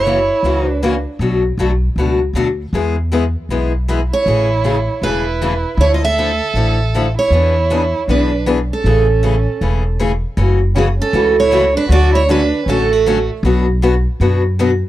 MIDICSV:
0, 0, Header, 1, 5, 480
1, 0, Start_track
1, 0, Key_signature, 3, "major"
1, 0, Tempo, 382166
1, 1510, Time_signature, 4, 2, 24, 8
1, 13027, Key_signature, 3, "minor"
1, 18701, End_track
2, 0, Start_track
2, 0, Title_t, "Steel-string acoustic guitar"
2, 0, Program_c, 0, 25
2, 0, Note_on_c, 0, 73, 85
2, 863, Note_off_c, 0, 73, 0
2, 863, Note_on_c, 0, 71, 85
2, 1293, Note_off_c, 0, 71, 0
2, 5192, Note_on_c, 0, 73, 92
2, 6322, Note_on_c, 0, 71, 90
2, 6352, Note_off_c, 0, 73, 0
2, 7223, Note_off_c, 0, 71, 0
2, 7293, Note_on_c, 0, 73, 95
2, 7457, Note_off_c, 0, 73, 0
2, 7463, Note_on_c, 0, 75, 79
2, 7568, Note_off_c, 0, 75, 0
2, 7593, Note_on_c, 0, 76, 104
2, 8968, Note_off_c, 0, 76, 0
2, 9028, Note_on_c, 0, 73, 81
2, 10175, Note_off_c, 0, 73, 0
2, 10180, Note_on_c, 0, 71, 71
2, 10611, Note_off_c, 0, 71, 0
2, 10967, Note_on_c, 0, 69, 74
2, 12518, Note_off_c, 0, 69, 0
2, 13541, Note_on_c, 0, 68, 72
2, 13618, Note_off_c, 0, 68, 0
2, 13835, Note_on_c, 0, 69, 90
2, 14269, Note_off_c, 0, 69, 0
2, 14315, Note_on_c, 0, 73, 88
2, 14748, Note_off_c, 0, 73, 0
2, 14782, Note_on_c, 0, 71, 99
2, 14961, Note_off_c, 0, 71, 0
2, 14972, Note_on_c, 0, 74, 104
2, 15239, Note_off_c, 0, 74, 0
2, 15263, Note_on_c, 0, 73, 93
2, 15441, Note_off_c, 0, 73, 0
2, 15461, Note_on_c, 0, 71, 93
2, 15939, Note_off_c, 0, 71, 0
2, 15945, Note_on_c, 0, 69, 88
2, 16236, Note_off_c, 0, 69, 0
2, 16236, Note_on_c, 0, 66, 69
2, 16702, Note_off_c, 0, 66, 0
2, 18701, End_track
3, 0, Start_track
3, 0, Title_t, "Violin"
3, 0, Program_c, 1, 40
3, 0, Note_on_c, 1, 64, 78
3, 841, Note_off_c, 1, 64, 0
3, 841, Note_on_c, 1, 62, 78
3, 1276, Note_off_c, 1, 62, 0
3, 5145, Note_on_c, 1, 64, 80
3, 6245, Note_off_c, 1, 64, 0
3, 6316, Note_on_c, 1, 64, 75
3, 7220, Note_off_c, 1, 64, 0
3, 7248, Note_on_c, 1, 64, 78
3, 7431, Note_off_c, 1, 64, 0
3, 7452, Note_on_c, 1, 65, 58
3, 7555, Note_off_c, 1, 65, 0
3, 7569, Note_on_c, 1, 69, 89
3, 8956, Note_off_c, 1, 69, 0
3, 9023, Note_on_c, 1, 64, 77
3, 10105, Note_off_c, 1, 64, 0
3, 10158, Note_on_c, 1, 62, 81
3, 10599, Note_off_c, 1, 62, 0
3, 10948, Note_on_c, 1, 61, 64
3, 12509, Note_off_c, 1, 61, 0
3, 13501, Note_on_c, 1, 61, 75
3, 13637, Note_off_c, 1, 61, 0
3, 13793, Note_on_c, 1, 61, 64
3, 14246, Note_off_c, 1, 61, 0
3, 14276, Note_on_c, 1, 64, 92
3, 14728, Note_off_c, 1, 64, 0
3, 14763, Note_on_c, 1, 62, 80
3, 14934, Note_off_c, 1, 62, 0
3, 14949, Note_on_c, 1, 66, 100
3, 15227, Note_off_c, 1, 66, 0
3, 15247, Note_on_c, 1, 64, 76
3, 15416, Note_off_c, 1, 64, 0
3, 15424, Note_on_c, 1, 62, 83
3, 15872, Note_off_c, 1, 62, 0
3, 15903, Note_on_c, 1, 61, 76
3, 16203, Note_on_c, 1, 57, 66
3, 16222, Note_off_c, 1, 61, 0
3, 16685, Note_off_c, 1, 57, 0
3, 18701, End_track
4, 0, Start_track
4, 0, Title_t, "Steel-string acoustic guitar"
4, 0, Program_c, 2, 25
4, 72, Note_on_c, 2, 49, 70
4, 83, Note_on_c, 2, 52, 69
4, 83, Note_on_c, 2, 58, 82
4, 89, Note_on_c, 2, 61, 80
4, 93, Note_on_c, 2, 66, 74
4, 214, Note_off_c, 2, 49, 0
4, 219, Note_off_c, 2, 52, 0
4, 219, Note_off_c, 2, 58, 0
4, 222, Note_off_c, 2, 61, 0
4, 224, Note_off_c, 2, 66, 0
4, 555, Note_on_c, 2, 49, 64
4, 564, Note_on_c, 2, 52, 55
4, 565, Note_on_c, 2, 61, 68
4, 566, Note_on_c, 2, 58, 71
4, 572, Note_on_c, 2, 66, 73
4, 820, Note_off_c, 2, 49, 0
4, 825, Note_off_c, 2, 52, 0
4, 825, Note_off_c, 2, 61, 0
4, 826, Note_off_c, 2, 58, 0
4, 829, Note_off_c, 2, 66, 0
4, 1037, Note_on_c, 2, 49, 80
4, 1042, Note_on_c, 2, 52, 92
4, 1042, Note_on_c, 2, 58, 82
4, 1054, Note_on_c, 2, 61, 98
4, 1056, Note_on_c, 2, 66, 91
4, 1175, Note_off_c, 2, 49, 0
4, 1178, Note_off_c, 2, 52, 0
4, 1178, Note_off_c, 2, 58, 0
4, 1184, Note_off_c, 2, 61, 0
4, 1185, Note_off_c, 2, 66, 0
4, 1516, Note_on_c, 2, 47, 61
4, 1522, Note_on_c, 2, 54, 65
4, 1528, Note_on_c, 2, 57, 68
4, 1533, Note_on_c, 2, 62, 68
4, 1535, Note_on_c, 2, 66, 68
4, 1780, Note_off_c, 2, 47, 0
4, 1783, Note_off_c, 2, 54, 0
4, 1786, Note_off_c, 2, 57, 0
4, 1788, Note_off_c, 2, 62, 0
4, 1789, Note_off_c, 2, 66, 0
4, 1995, Note_on_c, 2, 47, 76
4, 2002, Note_on_c, 2, 54, 80
4, 2007, Note_on_c, 2, 57, 82
4, 2012, Note_on_c, 2, 62, 75
4, 2014, Note_on_c, 2, 66, 78
4, 2133, Note_off_c, 2, 47, 0
4, 2137, Note_off_c, 2, 54, 0
4, 2139, Note_off_c, 2, 57, 0
4, 2142, Note_off_c, 2, 62, 0
4, 2143, Note_off_c, 2, 66, 0
4, 2486, Note_on_c, 2, 47, 64
4, 2492, Note_on_c, 2, 54, 62
4, 2499, Note_on_c, 2, 57, 55
4, 2504, Note_on_c, 2, 62, 74
4, 2505, Note_on_c, 2, 66, 70
4, 2744, Note_off_c, 2, 47, 0
4, 2747, Note_off_c, 2, 54, 0
4, 2751, Note_off_c, 2, 57, 0
4, 2753, Note_off_c, 2, 62, 0
4, 2753, Note_off_c, 2, 66, 0
4, 2952, Note_on_c, 2, 47, 75
4, 2959, Note_on_c, 2, 54, 85
4, 2965, Note_on_c, 2, 57, 91
4, 2969, Note_on_c, 2, 62, 102
4, 2977, Note_on_c, 2, 66, 94
4, 3091, Note_off_c, 2, 47, 0
4, 3095, Note_off_c, 2, 54, 0
4, 3098, Note_off_c, 2, 57, 0
4, 3099, Note_off_c, 2, 62, 0
4, 3103, Note_off_c, 2, 66, 0
4, 3440, Note_on_c, 2, 52, 60
4, 3449, Note_on_c, 2, 56, 63
4, 3452, Note_on_c, 2, 59, 66
4, 3454, Note_on_c, 2, 64, 78
4, 3455, Note_on_c, 2, 68, 79
4, 3700, Note_off_c, 2, 52, 0
4, 3705, Note_off_c, 2, 56, 0
4, 3706, Note_off_c, 2, 59, 0
4, 3708, Note_off_c, 2, 64, 0
4, 3708, Note_off_c, 2, 68, 0
4, 3914, Note_on_c, 2, 52, 83
4, 3921, Note_on_c, 2, 56, 78
4, 3928, Note_on_c, 2, 59, 80
4, 3930, Note_on_c, 2, 64, 92
4, 3933, Note_on_c, 2, 68, 79
4, 4051, Note_off_c, 2, 52, 0
4, 4055, Note_off_c, 2, 56, 0
4, 4058, Note_off_c, 2, 59, 0
4, 4059, Note_off_c, 2, 64, 0
4, 4061, Note_off_c, 2, 68, 0
4, 4400, Note_on_c, 2, 52, 62
4, 4404, Note_on_c, 2, 56, 70
4, 4412, Note_on_c, 2, 64, 68
4, 4413, Note_on_c, 2, 59, 67
4, 4420, Note_on_c, 2, 68, 76
4, 4660, Note_off_c, 2, 52, 0
4, 4662, Note_off_c, 2, 56, 0
4, 4666, Note_off_c, 2, 59, 0
4, 4666, Note_off_c, 2, 64, 0
4, 4670, Note_off_c, 2, 68, 0
4, 4877, Note_on_c, 2, 52, 80
4, 4881, Note_on_c, 2, 56, 79
4, 4888, Note_on_c, 2, 59, 85
4, 4891, Note_on_c, 2, 64, 90
4, 4901, Note_on_c, 2, 68, 80
4, 5013, Note_off_c, 2, 52, 0
4, 5015, Note_off_c, 2, 56, 0
4, 5018, Note_off_c, 2, 59, 0
4, 5019, Note_off_c, 2, 64, 0
4, 5024, Note_off_c, 2, 68, 0
4, 5357, Note_on_c, 2, 49, 63
4, 5369, Note_on_c, 2, 52, 60
4, 5370, Note_on_c, 2, 57, 60
4, 5370, Note_on_c, 2, 61, 71
4, 5377, Note_on_c, 2, 68, 71
4, 5618, Note_off_c, 2, 49, 0
4, 5624, Note_off_c, 2, 52, 0
4, 5625, Note_off_c, 2, 57, 0
4, 5625, Note_off_c, 2, 61, 0
4, 5628, Note_off_c, 2, 68, 0
4, 5829, Note_on_c, 2, 49, 68
4, 5833, Note_on_c, 2, 52, 74
4, 5838, Note_on_c, 2, 57, 74
4, 5839, Note_on_c, 2, 61, 82
4, 5847, Note_on_c, 2, 68, 82
4, 5968, Note_off_c, 2, 49, 0
4, 5970, Note_off_c, 2, 52, 0
4, 5973, Note_off_c, 2, 57, 0
4, 5973, Note_off_c, 2, 61, 0
4, 5977, Note_off_c, 2, 68, 0
4, 6318, Note_on_c, 2, 49, 66
4, 6319, Note_on_c, 2, 52, 55
4, 6321, Note_on_c, 2, 57, 67
4, 6327, Note_on_c, 2, 61, 69
4, 6332, Note_on_c, 2, 68, 78
4, 6578, Note_off_c, 2, 49, 0
4, 6579, Note_off_c, 2, 52, 0
4, 6580, Note_off_c, 2, 57, 0
4, 6583, Note_off_c, 2, 61, 0
4, 6586, Note_off_c, 2, 68, 0
4, 6802, Note_on_c, 2, 49, 81
4, 6806, Note_on_c, 2, 52, 86
4, 6808, Note_on_c, 2, 57, 85
4, 6812, Note_on_c, 2, 61, 76
4, 6814, Note_on_c, 2, 68, 94
4, 6934, Note_off_c, 2, 49, 0
4, 6936, Note_off_c, 2, 52, 0
4, 6938, Note_off_c, 2, 57, 0
4, 6940, Note_off_c, 2, 61, 0
4, 6941, Note_off_c, 2, 68, 0
4, 7290, Note_on_c, 2, 50, 65
4, 7291, Note_on_c, 2, 53, 60
4, 7301, Note_on_c, 2, 57, 67
4, 7302, Note_on_c, 2, 64, 71
4, 7545, Note_off_c, 2, 50, 0
4, 7545, Note_off_c, 2, 53, 0
4, 7550, Note_off_c, 2, 57, 0
4, 7550, Note_off_c, 2, 64, 0
4, 7763, Note_on_c, 2, 50, 81
4, 7767, Note_on_c, 2, 53, 81
4, 7771, Note_on_c, 2, 64, 78
4, 7775, Note_on_c, 2, 57, 81
4, 7895, Note_off_c, 2, 50, 0
4, 7897, Note_off_c, 2, 53, 0
4, 7899, Note_off_c, 2, 64, 0
4, 7901, Note_off_c, 2, 57, 0
4, 8233, Note_on_c, 2, 50, 67
4, 8242, Note_on_c, 2, 53, 63
4, 8249, Note_on_c, 2, 57, 79
4, 8254, Note_on_c, 2, 64, 66
4, 8496, Note_off_c, 2, 50, 0
4, 8501, Note_off_c, 2, 53, 0
4, 8504, Note_off_c, 2, 57, 0
4, 8506, Note_off_c, 2, 64, 0
4, 8724, Note_on_c, 2, 50, 87
4, 8734, Note_on_c, 2, 53, 89
4, 8740, Note_on_c, 2, 57, 83
4, 8744, Note_on_c, 2, 64, 89
4, 8856, Note_off_c, 2, 50, 0
4, 8861, Note_off_c, 2, 53, 0
4, 8864, Note_off_c, 2, 57, 0
4, 8866, Note_off_c, 2, 64, 0
4, 9198, Note_on_c, 2, 52, 69
4, 9204, Note_on_c, 2, 59, 68
4, 9210, Note_on_c, 2, 62, 72
4, 9217, Note_on_c, 2, 68, 64
4, 9459, Note_off_c, 2, 52, 0
4, 9462, Note_off_c, 2, 59, 0
4, 9465, Note_off_c, 2, 62, 0
4, 9468, Note_off_c, 2, 68, 0
4, 9674, Note_on_c, 2, 52, 72
4, 9681, Note_on_c, 2, 59, 89
4, 9689, Note_on_c, 2, 68, 98
4, 9690, Note_on_c, 2, 62, 83
4, 9811, Note_off_c, 2, 52, 0
4, 9815, Note_off_c, 2, 59, 0
4, 9819, Note_off_c, 2, 62, 0
4, 9819, Note_off_c, 2, 68, 0
4, 10161, Note_on_c, 2, 52, 69
4, 10166, Note_on_c, 2, 59, 70
4, 10170, Note_on_c, 2, 62, 69
4, 10177, Note_on_c, 2, 68, 66
4, 10421, Note_off_c, 2, 52, 0
4, 10423, Note_off_c, 2, 59, 0
4, 10425, Note_off_c, 2, 62, 0
4, 10429, Note_off_c, 2, 68, 0
4, 10630, Note_on_c, 2, 52, 90
4, 10640, Note_on_c, 2, 59, 89
4, 10642, Note_on_c, 2, 62, 78
4, 10648, Note_on_c, 2, 68, 91
4, 10770, Note_off_c, 2, 52, 0
4, 10774, Note_off_c, 2, 59, 0
4, 10776, Note_off_c, 2, 62, 0
4, 10778, Note_off_c, 2, 68, 0
4, 11122, Note_on_c, 2, 49, 58
4, 11127, Note_on_c, 2, 52, 65
4, 11129, Note_on_c, 2, 57, 70
4, 11131, Note_on_c, 2, 61, 75
4, 11133, Note_on_c, 2, 68, 67
4, 11382, Note_off_c, 2, 49, 0
4, 11384, Note_off_c, 2, 52, 0
4, 11385, Note_off_c, 2, 57, 0
4, 11386, Note_off_c, 2, 61, 0
4, 11387, Note_off_c, 2, 68, 0
4, 11590, Note_on_c, 2, 52, 81
4, 11592, Note_on_c, 2, 49, 70
4, 11599, Note_on_c, 2, 57, 76
4, 11604, Note_on_c, 2, 61, 85
4, 11610, Note_on_c, 2, 68, 79
4, 11730, Note_off_c, 2, 52, 0
4, 11731, Note_off_c, 2, 49, 0
4, 11735, Note_off_c, 2, 57, 0
4, 11737, Note_off_c, 2, 61, 0
4, 11740, Note_off_c, 2, 68, 0
4, 12075, Note_on_c, 2, 49, 57
4, 12076, Note_on_c, 2, 52, 65
4, 12079, Note_on_c, 2, 57, 60
4, 12087, Note_on_c, 2, 61, 57
4, 12092, Note_on_c, 2, 68, 66
4, 12339, Note_off_c, 2, 49, 0
4, 12339, Note_off_c, 2, 52, 0
4, 12341, Note_off_c, 2, 57, 0
4, 12344, Note_off_c, 2, 61, 0
4, 12347, Note_off_c, 2, 68, 0
4, 12553, Note_on_c, 2, 49, 73
4, 12555, Note_on_c, 2, 52, 76
4, 12560, Note_on_c, 2, 57, 83
4, 12561, Note_on_c, 2, 61, 85
4, 12568, Note_on_c, 2, 68, 85
4, 12692, Note_off_c, 2, 49, 0
4, 12693, Note_off_c, 2, 52, 0
4, 12695, Note_off_c, 2, 57, 0
4, 12696, Note_off_c, 2, 61, 0
4, 12699, Note_off_c, 2, 68, 0
4, 13025, Note_on_c, 2, 49, 65
4, 13025, Note_on_c, 2, 52, 71
4, 13034, Note_on_c, 2, 57, 75
4, 13037, Note_on_c, 2, 61, 74
4, 13038, Note_on_c, 2, 66, 68
4, 13294, Note_off_c, 2, 49, 0
4, 13294, Note_off_c, 2, 52, 0
4, 13298, Note_off_c, 2, 57, 0
4, 13300, Note_off_c, 2, 61, 0
4, 13300, Note_off_c, 2, 66, 0
4, 13508, Note_on_c, 2, 49, 84
4, 13512, Note_on_c, 2, 52, 87
4, 13519, Note_on_c, 2, 57, 71
4, 13519, Note_on_c, 2, 61, 89
4, 13524, Note_on_c, 2, 66, 85
4, 13650, Note_off_c, 2, 49, 0
4, 13652, Note_off_c, 2, 52, 0
4, 13655, Note_off_c, 2, 57, 0
4, 13655, Note_off_c, 2, 61, 0
4, 13658, Note_off_c, 2, 66, 0
4, 13982, Note_on_c, 2, 49, 73
4, 13991, Note_on_c, 2, 52, 63
4, 13994, Note_on_c, 2, 57, 78
4, 13997, Note_on_c, 2, 61, 72
4, 14003, Note_on_c, 2, 66, 82
4, 14253, Note_off_c, 2, 49, 0
4, 14257, Note_off_c, 2, 52, 0
4, 14258, Note_off_c, 2, 57, 0
4, 14260, Note_off_c, 2, 61, 0
4, 14263, Note_off_c, 2, 66, 0
4, 14456, Note_on_c, 2, 49, 78
4, 14466, Note_on_c, 2, 52, 86
4, 14472, Note_on_c, 2, 57, 84
4, 14473, Note_on_c, 2, 61, 87
4, 14480, Note_on_c, 2, 66, 98
4, 14604, Note_off_c, 2, 49, 0
4, 14609, Note_off_c, 2, 52, 0
4, 14612, Note_off_c, 2, 57, 0
4, 14612, Note_off_c, 2, 61, 0
4, 14616, Note_off_c, 2, 66, 0
4, 14951, Note_on_c, 2, 50, 71
4, 14954, Note_on_c, 2, 54, 60
4, 14961, Note_on_c, 2, 57, 67
4, 14969, Note_on_c, 2, 61, 69
4, 14973, Note_on_c, 2, 66, 67
4, 15217, Note_off_c, 2, 50, 0
4, 15219, Note_off_c, 2, 54, 0
4, 15222, Note_off_c, 2, 57, 0
4, 15226, Note_off_c, 2, 61, 0
4, 15228, Note_off_c, 2, 66, 0
4, 15432, Note_on_c, 2, 50, 79
4, 15438, Note_on_c, 2, 54, 90
4, 15441, Note_on_c, 2, 57, 80
4, 15446, Note_on_c, 2, 66, 91
4, 15447, Note_on_c, 2, 61, 91
4, 15572, Note_off_c, 2, 50, 0
4, 15575, Note_off_c, 2, 54, 0
4, 15577, Note_off_c, 2, 57, 0
4, 15579, Note_off_c, 2, 66, 0
4, 15580, Note_off_c, 2, 61, 0
4, 15923, Note_on_c, 2, 50, 63
4, 15925, Note_on_c, 2, 54, 65
4, 15935, Note_on_c, 2, 57, 77
4, 15940, Note_on_c, 2, 61, 73
4, 15942, Note_on_c, 2, 66, 78
4, 16183, Note_off_c, 2, 50, 0
4, 16185, Note_off_c, 2, 54, 0
4, 16189, Note_off_c, 2, 57, 0
4, 16192, Note_off_c, 2, 61, 0
4, 16193, Note_off_c, 2, 66, 0
4, 16407, Note_on_c, 2, 50, 88
4, 16410, Note_on_c, 2, 54, 89
4, 16419, Note_on_c, 2, 57, 95
4, 16423, Note_on_c, 2, 61, 103
4, 16425, Note_on_c, 2, 66, 91
4, 16539, Note_off_c, 2, 50, 0
4, 16541, Note_off_c, 2, 54, 0
4, 16546, Note_off_c, 2, 57, 0
4, 16548, Note_off_c, 2, 61, 0
4, 16549, Note_off_c, 2, 66, 0
4, 16889, Note_on_c, 2, 47, 67
4, 16891, Note_on_c, 2, 54, 76
4, 16893, Note_on_c, 2, 59, 68
4, 16905, Note_on_c, 2, 62, 63
4, 16905, Note_on_c, 2, 66, 81
4, 17146, Note_off_c, 2, 47, 0
4, 17147, Note_off_c, 2, 54, 0
4, 17149, Note_off_c, 2, 59, 0
4, 17154, Note_off_c, 2, 62, 0
4, 17155, Note_off_c, 2, 66, 0
4, 17361, Note_on_c, 2, 47, 82
4, 17363, Note_on_c, 2, 54, 79
4, 17369, Note_on_c, 2, 62, 78
4, 17373, Note_on_c, 2, 59, 89
4, 17375, Note_on_c, 2, 66, 94
4, 17497, Note_off_c, 2, 47, 0
4, 17497, Note_off_c, 2, 54, 0
4, 17500, Note_off_c, 2, 62, 0
4, 17503, Note_off_c, 2, 59, 0
4, 17503, Note_off_c, 2, 66, 0
4, 17843, Note_on_c, 2, 47, 63
4, 17848, Note_on_c, 2, 54, 68
4, 17849, Note_on_c, 2, 59, 75
4, 17855, Note_on_c, 2, 62, 63
4, 17858, Note_on_c, 2, 66, 74
4, 18103, Note_off_c, 2, 47, 0
4, 18106, Note_off_c, 2, 54, 0
4, 18106, Note_off_c, 2, 59, 0
4, 18109, Note_off_c, 2, 62, 0
4, 18111, Note_off_c, 2, 66, 0
4, 18326, Note_on_c, 2, 54, 81
4, 18329, Note_on_c, 2, 47, 91
4, 18332, Note_on_c, 2, 59, 91
4, 18337, Note_on_c, 2, 62, 89
4, 18341, Note_on_c, 2, 66, 101
4, 18459, Note_off_c, 2, 54, 0
4, 18460, Note_off_c, 2, 47, 0
4, 18462, Note_off_c, 2, 59, 0
4, 18464, Note_off_c, 2, 62, 0
4, 18467, Note_off_c, 2, 66, 0
4, 18701, End_track
5, 0, Start_track
5, 0, Title_t, "Upright bass"
5, 0, Program_c, 3, 32
5, 0, Note_on_c, 3, 30, 88
5, 350, Note_off_c, 3, 30, 0
5, 538, Note_on_c, 3, 37, 70
5, 1310, Note_off_c, 3, 37, 0
5, 1498, Note_on_c, 3, 35, 88
5, 1886, Note_off_c, 3, 35, 0
5, 1979, Note_on_c, 3, 35, 81
5, 2390, Note_off_c, 3, 35, 0
5, 2459, Note_on_c, 3, 37, 69
5, 2870, Note_off_c, 3, 37, 0
5, 2931, Note_on_c, 3, 38, 75
5, 3345, Note_off_c, 3, 38, 0
5, 3425, Note_on_c, 3, 40, 82
5, 4193, Note_off_c, 3, 40, 0
5, 4381, Note_on_c, 3, 35, 61
5, 5150, Note_off_c, 3, 35, 0
5, 5348, Note_on_c, 3, 33, 84
5, 6114, Note_off_c, 3, 33, 0
5, 6299, Note_on_c, 3, 28, 71
5, 7069, Note_off_c, 3, 28, 0
5, 7253, Note_on_c, 3, 38, 92
5, 8025, Note_off_c, 3, 38, 0
5, 8209, Note_on_c, 3, 33, 73
5, 8984, Note_off_c, 3, 33, 0
5, 9176, Note_on_c, 3, 40, 84
5, 9948, Note_off_c, 3, 40, 0
5, 10146, Note_on_c, 3, 35, 73
5, 10915, Note_off_c, 3, 35, 0
5, 11104, Note_on_c, 3, 33, 83
5, 11874, Note_off_c, 3, 33, 0
5, 12072, Note_on_c, 3, 28, 71
5, 12838, Note_off_c, 3, 28, 0
5, 13025, Note_on_c, 3, 30, 89
5, 13795, Note_off_c, 3, 30, 0
5, 13982, Note_on_c, 3, 37, 84
5, 14753, Note_off_c, 3, 37, 0
5, 14935, Note_on_c, 3, 38, 94
5, 15708, Note_off_c, 3, 38, 0
5, 15902, Note_on_c, 3, 33, 75
5, 16673, Note_off_c, 3, 33, 0
5, 16868, Note_on_c, 3, 35, 101
5, 17636, Note_off_c, 3, 35, 0
5, 17833, Note_on_c, 3, 42, 77
5, 18599, Note_off_c, 3, 42, 0
5, 18701, End_track
0, 0, End_of_file